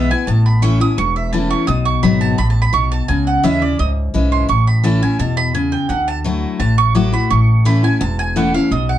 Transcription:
Already playing: upright bass B1, steel-string acoustic guitar B2 E3 G#3 B3, mandolin E5
0.11 steel-string acoustic guitar B3 E4, mandolin G#5
0.27 upright bass A1, steel-string acoustic guitar A2, mandolin A5
0.46 mandolin B5
0.62 steel-string acoustic guitar E3 A3 C#4 E4, mandolin C#6
0.80 steel-string acoustic guitar C#4 E4, mandolin D#6
0.97 upright bass E1, steel-string acoustic guitar E2, mandolin C#6
1.16 mandolin E5
1.33 steel-string acoustic guitar E3 A3 C#4 E4, mandolin A5
1.50 mandolin C#6
1.67 upright bass B1, steel-string acoustic guitar B2, mandolin D#6
1.85 mandolin C#6
2.03 upright bass G#1, steel-string acoustic guitar F#3 B3 D#4 F#4, mandolin B5
2.21 mandolin A5
2.38 upright bass A1, steel-string acoustic guitar A2, mandolin B5
2.50 mandolin A5
2.62 mandolin B5
2.73 upright bass B1, steel-string acoustic guitar B2, mandolin C#6
2.92 mandolin A5
3.08 upright bass C#2, steel-string acoustic guitar C#3, mandolin G#5
3.27 mandolin F#5
3.43 upright bass D#2, steel-string acoustic guitar E3 G#3 C#4 E4, mandolin E5
3.62 steel-string acoustic guitar C#4 E4, mandolin D5
3.79 upright bass C#2, steel-string acoustic guitar G#2, mandolin D#5
4.14 upright bass B1, steel-string acoustic guitar E3 G#3 C#4 E4
4.32 mandolin C6
4.49 upright bass A1, steel-string acoustic guitar A2, mandolin C#6
4.67 mandolin B5
4.84 steel-string acoustic guitar E3 A3 C#4 E4, mandolin A5
5.02 steel-string acoustic guitar C#4 E4, mandolin G#5
5.19 upright bass E2, steel-string acoustic guitar B2, mandolin A5
5.37 mandolin B5
5.54 steel-string acoustic guitar C#3, mandolin G#5
5.72 mandolin G5
5.89 upright bass D2, steel-string acoustic guitar D3, mandolin F#5
6.08 mandolin A5
6.24 steel-string acoustic guitar F#3 A3 E4 F#4
6.60 upright bass A1, steel-string acoustic guitar A2, mandolin A5
6.78 mandolin C#6
6.95 steel-string acoustic guitar F#3 A3 E4 F#4, mandolin D6
7.12 steel-string acoustic guitar E4 F#4, mandolin B5
7.30 upright bass A1, steel-string acoustic guitar A2, mandolin C#6
7.65 steel-string acoustic guitar E3 A3 C#4 E4, mandolin B5
7.83 steel-string acoustic guitar C#4 E4, mandolin G#5
8.01 upright bass E1, steel-string acoustic guitar E2, mandolin A5
8.19 mandolin G#5
8.36 steel-string acoustic guitar E3 A3 C#4 E4, mandolin F#5
8.54 steel-string acoustic guitar C#4 E4, mandolin F5
8.71 upright bass B1, steel-string acoustic guitar B2, mandolin D#5
8.89 mandolin F#5

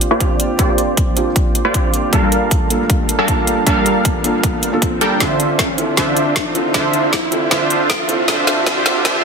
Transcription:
Already playing: felt piano C4 D4 F4 G4, riser
0.01 closed hi-hat
0.11 supersaw synth A#3 F4 G4 C5 D5
0.20 felt piano C4 D4 F4 G4, kick, closed hi-hat
0.40 closed hi-hat
0.57 supersaw synth A#3 F4 G4 C5 D5, felt piano C4 D4 F4 G4, kick, closed hi-hat
0.78 closed hi-hat
0.97 kick, closed hi-hat
1.16 felt piano C4 D4 F4 G4, closed hi-hat
1.36 kick, closed hi-hat
1.55 closed hi-hat
1.65 supersaw synth A#3 F4 G4 C5 D5
1.73 felt piano C4 D4 F4 G4, kick, closed hi-hat
1.94 closed hi-hat
2.11 supersaw synth G3 D4 A4 A#4 F5, felt piano A#3 D4 F4, kick, closed hi-hat
2.15 felt piano A5
2.32 closed hi-hat
2.51 kick, closed hi-hat
2.70 felt piano A#3 D4 F4 A4, closed hi-hat
2.90 kick, closed hi-hat
3.09 closed hi-hat
3.19 supersaw synth G3 D4 A4 A#4 F5
3.27 felt piano A#3 D4 F4 A5, kick, closed hi-hat
3.47 closed hi-hat
3.65 supersaw synth G3 D4 A4 A#4 F5, felt piano A#3 D4 F4, kick, closed hi-hat
3.69 felt piano A5
3.86 closed hi-hat
4.05 kick, closed hi-hat
4.23 felt piano A#3 D4 F4 A4, closed hi-hat
4.43 kick, closed hi-hat
4.63 closed hi-hat
4.72 felt piano A#3 D4 F4 A4
4.82 kick, closed hi-hat
5.00 supersaw synth G3 D4 A4 A#4 G5, felt piano A#3 D4 F4 A4, closed hi-hat
5.19 supersaw synth D3 D4 F4 C5 E5, felt piano C4 F4 E5, kick, snare, closed hi-hat
5.23 felt piano A4
5.40 closed hi-hat
5.59 kick, snare, closed hi-hat
5.77 felt piano C4 E4 F4 A4, closed hi-hat
5.95 supersaw synth D3 D4 F4 C5 E5, felt piano C4 F4 E5, kick, snare, closed hi-hat
5.99 felt piano A4
6.17 closed hi-hat
6.36 kick, snare, closed hi-hat
6.54 felt piano C4 E4 F4 A4, closed hi-hat
6.72 supersaw synth D3 D4 F4 C5 E5, felt piano C4 F4 A4 E5, kick, snare, closed hi-hat
6.93 closed hi-hat
7.13 kick, snare, closed hi-hat
7.31 felt piano C4 E4 F4 A4, closed hi-hat
7.49 supersaw synth D3 D4 F4 C5 E5, felt piano C4 F4 A4 E5, kick, snare, closed hi-hat
7.70 closed hi-hat
7.90 kick, snare, closed hi-hat
8.08 felt piano C4 E4 F4 A4, closed hi-hat
8.26 supersaw synth D3 D4 F4 C5 E5, felt piano C4 F4 E5, kick, snare, closed hi-hat
8.30 felt piano A4
8.47 snare, closed hi-hat
8.65 supersaw synth D3 D4 F4 C5 E5, felt piano C4 F4 E5, kick, snare, closed hi-hat
8.69 felt piano A4
8.86 snare, closed hi-hat
9.03 supersaw synth D3 D4 F4 C5 E5, felt piano C4 F4 A4 E5, kick, snare, closed hi-hat

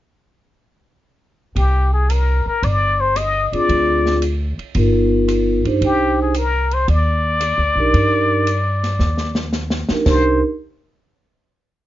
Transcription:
1.56 upright bass C2, muted trumpet G4, kick, ride
1.93 muted trumpet G#4
2.10 muted trumpet A#4, hi-hat pedal, ride
2.46 muted trumpet A#4, muted upright bass stroke
2.63 upright bass G1, muted trumpet D5, kick, ride
3.01 muted trumpet C5
3.16 muted trumpet D#5, cross-stick, hi-hat pedal, ride
3.52 vibraphone C4 D4 F4 G#4, muted trumpet D5, muted upright bass stroke, ride
3.69 upright bass D2, kick, ride
4.06 snare
4.22 hi-hat pedal, ride
4.58 muted upright bass stroke, ride
4.75 upright bass G1, vibraphone B3 D#4 F4 A#4, kick, ride
5.28 cross-stick, hi-hat pedal, ride
5.65 upright bass G2, vibraphone D4 D#4 G4 C5, ride
5.81 upright bass C2, kick, ride
5.85 muted trumpet G4
6.22 muted trumpet G#4
6.34 muted trumpet A#4, hi-hat pedal, ride
6.71 muted trumpet C5, ride
6.88 upright bass D#2, muted trumpet D5, kick, ride
7.40 cross-stick, hi-hat pedal, ride
7.58 upright bass D2
7.75 upright bass B1, vibraphone D4 D#4 G4 A#4
7.94 upright bass G2, kick, ride
8.47 hi-hat pedal, ride
8.84 snare, ride
8.99 upright bass D#2, snare
9.18 snare
9.35 snare
9.53 snare, hi-hat pedal
9.70 snare
9.89 vibraphone D4 D#4 G4 A#4, muted upright bass stroke, snare
10.06 upright bass C2, vibraphone D4 D#4 G4 A#4, muted trumpet C5, kick, snare, crash

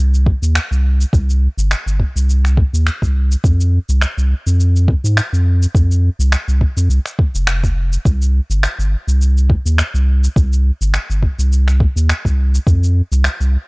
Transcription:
Already playing: sub bass C2
0.15 shaker
0.26 kick
0.42 sub bass D#2, shaker
0.55 finger snap, shaker
0.71 sub bass C2, shaker
1.01 shaker
1.13 sub bass C2, kick, shaker
1.30 shaker
1.57 sub bass G1, shaker
1.71 finger snap, shaker
1.86 sub bass G1, shaker
2.00 kick
2.16 sub bass C2, shaker
2.30 shaker
2.45 finger snap, shaker
2.57 kick
2.73 sub bass D#2, shaker
2.87 finger snap, shaker
3.02 sub bass C2, kick, shaker
3.32 shaker
3.44 sub bass F2, kick, shaker
3.61 shaker
3.89 sub bass C2, shaker
4.01 finger snap, shaker
4.17 sub bass C2, shaker
4.46 sub bass F2, shaker
4.60 shaker
4.76 shaker
4.88 kick
5.04 sub bass G#2, shaker
5.17 finger snap, shaker
5.33 sub bass F2, shaker
5.63 shaker
5.75 sub bass F2, kick, shaker
5.92 shaker
6.19 sub bass C2, shaker
6.32 finger snap, shaker
6.48 sub bass C2, shaker
6.61 kick
6.77 sub bass F2, shaker
6.89 sub bass C2, shaker
7.06 finger snap, shaker
7.19 kick
7.35 sub bass F1, shaker
7.47 finger snap, shaker
7.64 kick, shaker
7.93 shaker
8.05 sub bass C2, kick, shaker
8.22 shaker
8.50 sub bass G1, shaker
8.63 finger snap, shaker
8.79 sub bass G1, shaker
9.07 sub bass C2, shaker
9.22 shaker
9.38 shaker
9.50 kick
9.66 sub bass D#2, shaker
9.78 finger snap, shaker
9.94 sub bass C2, shaker
10.24 shaker
10.36 sub bass C2, kick, shaker
10.53 shaker
10.81 sub bass G1, shaker
10.94 finger snap, shaker
11.10 sub bass G1, shaker
11.23 kick
11.39 sub bass C2, shaker
11.53 shaker
11.68 finger snap, shaker
11.80 kick
11.96 sub bass D#2, shaker
12.09 finger snap, shaker
12.25 sub bass C2, kick, shaker
12.55 shaker
12.67 sub bass F2, kick, shaker
12.84 shaker
13.12 sub bass C2, shaker
13.24 finger snap, shaker
13.40 sub bass C2, shaker

